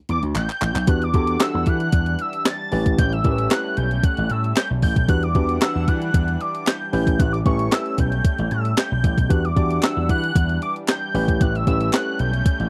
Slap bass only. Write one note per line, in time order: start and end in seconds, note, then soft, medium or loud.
0.09 0.20 E2 medium
0.23 0.33 D2 medium
0.35 0.47 A1 medium
0.62 0.73 A1 medium
0.75 0.85 B1 medium
0.88 1.09 E2 loud
1.14 1.36 E2 loud
1.55 1.65 E2 loud
1.67 1.88 E3 loud
1.93 2.14 E2 loud
2.72 2.94 A1 loud
2.98 3.20 A1 loud
3.25 3.46 A1 loud
3.77 3.99 B1 medium
4.18 4.28 A1 medium
4.31 4.52 A2 loud
4.71 4.81 B1 medium
4.83 4.94 A1 loud
4.96 5.06 B1 medium
5.09 5.30 E2 loud
5.35 5.57 E2 loud
5.76 5.86 E2 loud
5.88 6.09 E3 loud
6.14 6.36 E2 loud
6.93 7.15 A1 loud
7.20 7.41 A1 loud
7.46 7.67 A1 loud
7.99 8.20 B1 loud
8.39 8.49 A1 medium
8.51 8.73 A2 medium
8.92 9.02 B1 medium
9.04 9.15 A1 loud
9.18 9.28 B1 medium
9.30 9.52 E2 loud
9.57 9.78 E2 loud
9.97 10.07 E2 medium
10.09 10.31 E3 loud
10.36 10.57 E2 loud
11.14 11.36 A1 loud
11.41 11.62 A1 loud
11.67 11.88 A1 loud
12.20 12.41 B1 loud
12.60 12.69 A1 medium